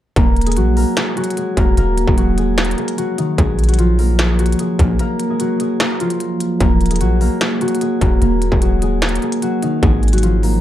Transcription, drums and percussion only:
0.16 kick loud
0.16 closed hi-hat medium
0.36 closed hi-hat soft
0.41 closed hi-hat medium
0.47 closed hi-hat medium
0.52 closed hi-hat medium
0.57 closed hi-hat medium
0.77 open hi-hat soft
0.97 snare loud
0.97 closed hi-hat medium
1.17 closed hi-hat medium
1.24 closed hi-hat medium
1.30 closed hi-hat medium
1.37 closed hi-hat medium
1.57 kick medium
1.57 closed hi-hat medium
1.77 closed hi-hat medium
1.98 closed hi-hat medium
2.08 kick medium
2.18 closed hi-hat medium
2.38 closed hi-hat medium
2.58 snare loud
2.58 closed hi-hat soft
2.65 closed hi-hat medium
2.71 closed hi-hat medium
2.78 closed hi-hat soft
2.88 closed hi-hat medium
2.98 closed hi-hat medium
3.18 closed hi-hat medium
3.38 kick loud
3.38 closed hi-hat medium
3.59 closed hi-hat soft
3.64 closed hi-hat medium
3.69 closed hi-hat medium
3.74 closed hi-hat medium
3.79 closed hi-hat medium
3.99 open hi-hat soft
4.19 snare loud
4.19 closed hi-hat medium
4.39 closed hi-hat medium
4.46 closed hi-hat medium
4.52 closed hi-hat medium
4.59 closed hi-hat medium
4.79 kick medium
4.79 closed hi-hat medium
4.99 closed hi-hat medium
5.20 closed hi-hat medium
5.40 closed hi-hat medium
5.60 closed hi-hat medium
5.80 snare loud
5.80 closed hi-hat medium
6.00 closed hi-hat medium
6.10 closed hi-hat medium
6.20 closed hi-hat medium
6.40 closed hi-hat medium
6.60 kick loud
6.60 closed hi-hat medium
6.81 closed hi-hat soft
6.86 closed hi-hat medium
6.91 closed hi-hat medium
6.96 closed hi-hat medium
7.01 closed hi-hat medium
7.21 open hi-hat soft
7.41 snare loud
7.41 closed hi-hat medium
7.61 closed hi-hat medium
7.68 closed hi-hat medium
7.75 closed hi-hat medium
7.81 closed hi-hat medium
8.01 kick medium
8.01 closed hi-hat medium
8.22 closed hi-hat medium
8.42 closed hi-hat medium
8.52 kick medium
8.62 closed hi-hat medium
8.82 closed hi-hat medium
9.02 snare loud
9.02 closed hi-hat soft
9.09 closed hi-hat medium
9.15 closed hi-hat medium
9.22 closed hi-hat soft
9.32 closed hi-hat medium
9.42 closed hi-hat medium
9.63 closed hi-hat medium
9.83 kick loud
9.83 closed hi-hat medium
10.03 closed hi-hat soft
10.08 closed hi-hat medium
10.13 closed hi-hat medium
10.18 closed hi-hat medium
10.23 closed hi-hat medium
10.43 open hi-hat medium

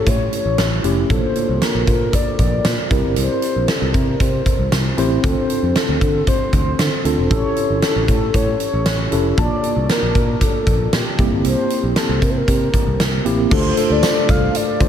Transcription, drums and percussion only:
0.07 kick medium
0.07 closed hi-hat medium
0.33 closed hi-hat medium
0.58 snare loud
0.58 closed hi-hat medium
0.84 closed hi-hat medium
1.10 kick loud
1.10 closed hi-hat medium
1.36 closed hi-hat medium
1.62 snare medium
1.62 closed hi-hat medium
1.87 kick medium
1.87 closed hi-hat medium
2.13 kick medium
2.13 closed hi-hat medium
2.39 kick medium
2.39 closed hi-hat medium
2.65 snare loud
2.65 closed hi-hat medium
2.91 kick medium
2.91 closed hi-hat medium
3.16 closed hi-hat medium
3.42 closed hi-hat medium
3.68 snare loud
3.68 closed hi-hat medium
3.94 kick medium
3.94 closed hi-hat medium
4.20 kick medium
4.20 closed hi-hat medium
4.46 kick medium
4.46 closed hi-hat medium
4.72 snare loud
4.72 closed hi-hat medium
4.98 closed hi-hat medium
5.24 kick loud
5.24 closed hi-hat medium
5.50 closed hi-hat medium
5.76 snare loud
5.76 closed hi-hat medium
6.01 kick medium
6.01 closed hi-hat medium
6.27 kick medium
6.27 closed hi-hat medium
6.53 kick medium
6.53 closed hi-hat medium
6.79 snare loud
6.79 closed hi-hat medium
7.05 closed hi-hat medium
7.31 kick loud
7.31 closed hi-hat medium
7.56 closed hi-hat medium
7.82 snare loud
7.82 closed hi-hat medium
8.08 kick medium
8.08 closed hi-hat medium
8.34 kick medium
8.34 closed hi-hat medium
8.60 closed hi-hat medium
8.86 snare loud
8.86 closed hi-hat medium
9.12 closed hi-hat medium
9.38 kick loud
9.38 closed hi-hat medium
9.64 closed hi-hat medium
9.89 snare loud
9.89 closed hi-hat medium
10.15 kick medium
10.15 closed hi-hat medium
10.41 kick medium
10.41 closed hi-hat medium
10.67 kick medium
10.67 closed hi-hat medium
10.93 snare loud
10.93 closed hi-hat medium
11.19 kick medium
11.19 closed hi-hat medium
11.45 closed hi-hat medium
11.70 closed hi-hat medium
11.96 snare loud
11.96 closed hi-hat medium
12.22 kick medium
12.22 closed hi-hat medium
12.48 kick medium
12.48 closed hi-hat medium
12.74 kick medium
12.74 closed hi-hat medium
13.00 snare loud
13.00 closed hi-hat medium
13.26 closed hi-hat medium
13.51 kick loud
13.51 crash loud
13.51 tambourine soft
13.77 closed hi-hat medium
13.77 tambourine soft
14.03 snare loud
14.03 closed hi-hat medium
14.03 tambourine medium
14.29 kick medium
14.29 closed hi-hat medium
14.29 tambourine soft
14.55 closed hi-hat medium
14.55 tambourine soft
14.80 kick loud
14.80 closed hi-hat medium

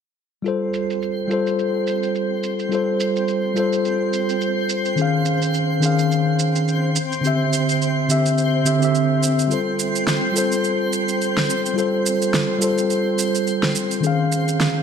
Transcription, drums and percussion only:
0.46 shaker soft
0.74 shaker medium
0.90 shaker soft
1.02 shaker soft
1.31 shaker medium
1.47 shaker soft
1.59 shaker soft
1.87 shaker medium
2.03 shaker soft
2.15 shaker soft
2.43 shaker medium
2.59 shaker soft
2.72 shaker soft
3.00 shaker medium
3.16 shaker soft
3.28 shaker soft
3.56 shaker medium
3.73 shaker soft
3.85 shaker soft
4.13 shaker medium
4.29 shaker soft
4.41 shaker soft
4.69 shaker medium
4.85 shaker soft
4.98 shaker soft
5.25 shaker medium
5.42 shaker soft
5.54 shaker soft
5.83 shaker medium
5.99 shaker soft
6.12 shaker soft
6.39 shaker medium
6.56 shaker soft
6.68 shaker soft
6.96 shaker medium
7.12 shaker soft
7.25 shaker soft
7.53 shaker medium
7.69 shaker soft
7.82 shaker soft
8.10 shaker medium
8.26 shaker soft
8.38 shaker soft
8.66 shaker medium
8.82 shaker soft
8.95 shaker soft
9.23 shaker medium
9.39 shaker soft
9.51 shaker soft
9.79 shaker medium
9.96 shaker soft
10.07 snare medium
10.07 shaker soft
10.36 shaker medium
10.52 shaker soft
10.64 shaker soft
10.93 shaker medium
11.09 shaker soft
11.22 shaker soft
11.37 snare medium
11.50 shaker medium
11.66 shaker soft
11.78 shaker soft
12.06 shaker medium
12.22 shaker soft
12.34 snare medium
12.34 shaker soft
12.62 shaker medium
12.78 shaker soft
12.90 shaker soft
13.18 shaker medium
13.35 shaker soft
13.47 shaker soft
13.63 snare medium
13.75 shaker medium
13.91 shaker soft
14.04 shaker soft
14.32 shaker medium
14.48 shaker soft
14.60 snare medium
14.60 shaker soft

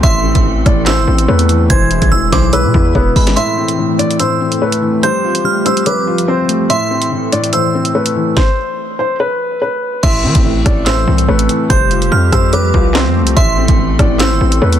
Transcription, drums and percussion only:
0.03 kick loud
0.03 closed hi-hat medium
0.35 kick loud
0.35 closed hi-hat medium
0.66 kick loud
0.66 cross-stick medium
0.66 closed hi-hat medium
0.86 snare loud
0.86 clap medium
0.86 closed hi-hat medium
1.18 closed hi-hat medium
1.39 closed hi-hat medium
1.49 closed hi-hat medium
1.70 kick loud
1.70 closed hi-hat medium
1.91 closed hi-hat medium
2.02 kick loud
2.02 closed hi-hat medium
2.32 kick loud
2.32 snare medium
2.32 closed hi-hat medium
2.53 closed hi-hat medium
2.74 kick loud
2.95 kick medium
3.16 kick loud
3.16 open hi-hat medium
3.27 snare loud
3.27 closed hi-hat medium
3.37 closed hi-hat medium
3.68 closed hi-hat medium
3.99 closed hi-hat medium
4.11 closed hi-hat medium
4.20 closed hi-hat medium
4.52 closed hi-hat medium
4.72 closed hi-hat medium
5.03 closed hi-hat medium
5.35 closed hi-hat medium
5.66 closed hi-hat medium
5.77 closed hi-hat medium
5.86 closed hi-hat medium
6.18 closed hi-hat medium
6.49 closed hi-hat medium
6.70 closed hi-hat medium
7.02 closed hi-hat medium
7.32 closed hi-hat medium
7.44 closed hi-hat medium
7.53 closed hi-hat medium
7.85 closed hi-hat medium
8.06 closed hi-hat medium
8.37 kick loud
8.37 snare medium
10.03 kick loud
10.03 closed hi-hat medium
10.03 crash loud
10.35 kick loud
10.35 closed hi-hat medium
10.66 kick loud
10.66 cross-stick medium
10.66 closed hi-hat medium
10.86 snare loud
10.86 clap medium
10.86 closed hi-hat medium
11.18 closed hi-hat medium
11.39 closed hi-hat medium
11.49 closed hi-hat medium
11.70 kick loud
11.70 closed hi-hat medium
11.91 closed hi-hat medium
12.02 closed hi-hat medium
12.32 kick loud
12.32 cross-stick loud
12.32 closed hi-hat medium
12.53 closed hi-hat medium
12.74 kick loud
12.95 snare loud
12.95 clap loud
13.27 closed hi-hat medium
13.37 kick loud
13.37 closed hi-hat medium
13.68 kick medium
13.68 closed hi-hat medium
13.99 kick loud
13.99 cross-stick loud
13.99 closed hi-hat medium
14.20 snare loud
14.20 clap medium
14.20 closed hi-hat medium
14.52 closed hi-hat medium
14.72 closed hi-hat medium

